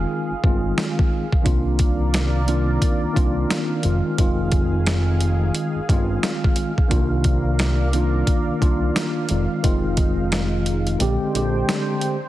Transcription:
0.00 0.32 D#3 loud
0.00 1.42 D#3 medium
0.00 0.33 G#3 medium
0.00 0.33 C4 medium
0.00 0.33 F4 loud
0.00 1.42 G#4 medium
0.00 1.42 F5 medium
0.30 0.35 G1 soft
0.44 0.73 G1 loud
0.44 1.24 D#3 medium
0.44 1.25 G#3 medium
0.44 1.25 C4 medium
0.44 1.26 F4 loud
0.44 kick loud
0.78 snare loud
0.99 kick loud
1.33 kick medium
1.42 2.78 C2 loud
1.42 2.40 D#3 medium
1.42 9.26 D#3 medium
1.42 2.40 A#3 medium
1.42 2.40 C4 medium
1.42 2.41 D4 medium
1.42 2.41 F4 loud
1.42 3.82 A#4 medium
1.42 3.82 D5 medium
1.42 10.96 F5 medium
1.42 kick loud
1.42 closed hi-hat medium
1.79 kick medium
1.79 closed hi-hat medium
2.14 snare loud
2.14 closed hi-hat medium
2.46 3.11 D#3 medium
2.46 3.11 A#3 medium
2.46 3.12 C4 medium
2.46 3.12 D4 medium
2.46 3.12 F4 loud
2.46 closed hi-hat medium
2.82 kick medium
2.82 closed hi-hat medium
3.03 3.08 C2 soft
3.13 3.45 C2 loud
3.13 3.78 D#3 loud
3.13 3.78 A#3 medium
3.13 3.79 C4 medium
3.13 3.79 D4 medium
3.13 3.80 F4 loud
3.13 kick loud
3.17 closed hi-hat medium
3.50 snare loud
3.50 closed hi-hat medium
3.82 4.02 F1 loud
3.82 4.15 D#3 medium
3.82 4.16 G#3 medium
3.82 4.16 C4 medium
3.82 4.17 F4 medium
3.82 6.89 G#4 medium
3.82 closed hi-hat medium
4.17 5.51 F1 loud
4.17 5.77 D#3 loud
4.17 5.78 G#3 medium
4.17 5.78 C4 medium
4.17 5.79 F4 loud
4.17 kick loud
4.17 closed hi-hat medium
4.52 kick medium
4.52 closed hi-hat medium
4.87 snare loud
4.87 closed hi-hat medium
5.21 closed hi-hat medium
5.55 closed hi-hat medium
5.75 5.81 G1 soft
5.89 6.18 G1 loud
5.89 6.70 D#3 medium
5.89 6.70 G#3 medium
5.89 6.71 C4 medium
5.89 6.71 F4 loud
5.89 kick loud
5.89 closed hi-hat medium
6.23 snare loud
6.23 closed hi-hat medium
6.44 kick loud
6.56 closed hi-hat medium
6.78 kick medium
6.88 8.23 C2 loud
6.88 7.85 D#3 medium
6.88 7.86 A#3 medium
6.88 7.86 D4 medium
6.88 7.87 F4 loud
6.88 kick loud
6.88 closed hi-hat medium
6.92 9.28 A#4 medium
6.92 9.28 D5 medium
7.24 kick medium
7.24 closed hi-hat medium
7.59 snare loud
7.59 closed hi-hat medium
7.93 8.57 D#3 medium
7.93 8.57 A#3 medium
7.93 8.58 D4 medium
7.93 8.58 F4 loud
7.93 closed hi-hat medium
8.27 kick medium
8.27 closed hi-hat medium
8.48 8.53 C2 soft
8.59 8.91 C2 loud
8.59 9.24 D#3 medium
8.59 9.25 A#3 medium
8.59 9.25 D4 medium
8.59 9.26 F4 loud
8.59 kick loud
8.59 closed hi-hat medium
8.96 snare loud
8.96 closed hi-hat medium
9.29 9.47 F1 medium
9.29 9.61 D#3 medium
9.29 12.29 G#3 medium
9.29 9.62 G#3 medium
9.29 9.62 C4 medium
9.29 10.98 D#4 medium
9.29 9.63 F4 medium
9.29 closed hi-hat medium
9.62 10.96 F1 loud
9.62 10.99 D#3 medium
9.62 10.99 G#3 medium
9.62 10.99 C4 medium
9.62 11.01 F4 loud
9.62 kick loud
9.62 closed hi-hat loud
9.97 kick medium
9.97 closed hi-hat medium
10.32 snare loud
10.32 closed hi-hat medium
10.66 closed hi-hat medium
10.87 closed hi-hat medium
10.98 11.18 A#1 loud
10.98 11.31 D3 loud
10.98 11.32 G#3 medium
10.98 11.32 C4 medium
10.98 12.29 D4 medium
10.98 11.33 G4 loud
10.98 12.29 C5 medium
10.98 12.29 G5 medium
10.98 closed hi-hat medium
11.21 11.26 A#1 soft
11.33 11.63 A#1 loud
11.33 12.14 D3 medium
11.33 12.15 G#3 medium
11.33 12.15 C4 medium
11.33 12.16 G4 loud
11.33 closed hi-hat medium
11.69 snare loud
11.69 closed hi-hat medium
12.01 closed hi-hat medium

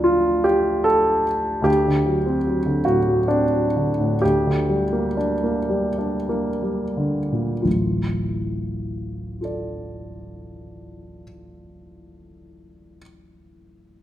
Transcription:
0.00 1.60 D2 soft
0.00 1.62 D3 soft
0.00 1.24 F3 soft
0.00 1.24 A3 soft
0.00 1.27 D4 medium
0.00 0.45 F4 medium
0.44 0.86 G4 medium
0.84 1.66 A4 medium
1.62 4.15 D2 soft
1.62 2.83 G4 medium
1.87 2.18 D3 soft
2.06 2.37 F#3 soft
2.26 2.57 C4 soft
2.47 2.78 F#3 soft
2.66 2.98 D3 soft
2.85 3.20 A2 soft
2.85 3.28 F#4 medium
3.08 3.42 F#3 soft
3.28 3.66 C4 soft
3.28 4.22 D4 medium
3.53 3.90 F#3 soft
3.76 4.14 D3 soft
4.00 4.23 A2 soft
4.22 7.61 D2 soft
4.22 5.16 G4 medium
4.47 4.83 D3 soft
4.69 5.07 G3 soft
4.93 5.32 A#3 soft
5.17 5.59 D4 soft
5.44 5.87 A#3 soft
5.69 6.16 G3 soft
5.99 6.49 D4 soft
6.29 6.83 A#3 soft
6.62 7.19 G3 soft
6.97 7.52 D3 soft
7.32 7.64 A#2 soft
7.62 11.21 D1 soft
7.62 11.22 A1 soft
7.62 9.39 F4 soft
9.41 12.98 F4 soft
9.41 13.00 A4 soft
9.41 13.02 D5 soft

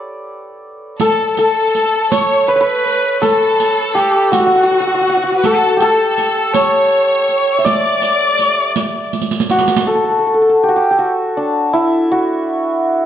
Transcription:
0.00 0.45 G4 medium
0.00 1.00 A4 medium
0.00 0.92 B4 medium
0.00 1.25 D5 medium
1.00 1.35 A4 medium
1.00 1.38 A4 medium
1.00 1.35 A4 medium
1.00 riq medium
1.37 2.07 A4 medium
1.37 2.14 A4 medium
1.37 3.21 A4 medium
1.37 riq soft
1.75 riq soft
2.12 2.55 C#5 medium
2.12 2.49 C#5 medium
2.12 2.50 C#5 medium
2.12 riq medium
2.48 2.60 B4 medium
2.48 2.62 B4 medium
2.56 5.11 C#5 medium
2.61 5.34 B4 medium
2.61 3.18 B4 medium
2.61 3.23 B4 medium
2.86 riq soft
3.22 5.45 A4 medium
3.22 3.95 A4 medium
3.22 4.33 A4 medium
3.22 riq medium
3.60 riq soft
3.95 4.38 G4 medium
3.95 4.35 G4 medium
3.95 riq soft
4.32 4.39 F#4 medium
4.32 5.45 F#4 medium
4.32 5.33 F#4 medium
4.32 riq medium
4.40 4.46 F#4 soft
4.46 4.55 F#4 medium
4.56 4.63 F#4 medium
4.63 4.71 F#4 medium
4.71 4.80 F#4 soft
4.80 4.87 F#4 medium
4.87 4.94 F#4 medium
4.95 5.01 F#4 medium
5.01 5.09 F#4 soft
5.07 5.17 F#4 medium
5.07 riq soft
5.17 5.23 F#4 medium
5.24 5.31 F#4 medium
5.32 5.83 F#4 soft
5.38 5.44 B4 medium
5.44 5.80 A4 medium
5.44 5.81 A4 medium
5.44 5.82 A4 medium
5.44 riq medium
5.77 8.91 G4 medium
5.77 6.55 A4 medium
5.77 riq soft
5.82 8.75 A4 medium
5.82 6.51 A4 medium
6.18 riq soft
6.53 7.28 C#5 medium
6.53 7.65 C#5 medium
6.53 7.71 C#5 medium
6.53 riq medium
7.29 7.67 C#5 medium
7.29 riq soft
7.58 9.88 E5 medium
7.65 10.11 D5 loud
7.65 9.13 D5 medium
7.65 riq medium
8.02 riq soft
8.39 riq soft
8.76 riq medium
9.13 riq soft
9.21 riq soft
9.31 riq medium
9.40 riq medium
9.49 10.68 F#4 medium
9.49 riq medium
9.59 riq medium
9.68 riq medium
9.76 riq medium
9.87 9.95 A4 medium
9.95 10.04 A4 medium
10.04 10.10 A4 medium
10.10 10.18 A4 soft
10.19 10.26 A4 soft
10.26 10.34 A4 soft
10.34 10.41 A4 soft
10.42 10.49 A4 soft
10.49 13.06 A4 medium
10.63 10.74 G4 medium
10.69 10.82 F#4 medium
10.76 10.90 G4 medium
10.91 11.05 G4 medium
10.99 12.11 F#4 medium
11.37 13.06 D4 medium
11.73 13.06 E4 medium
12.12 13.06 F#4 medium

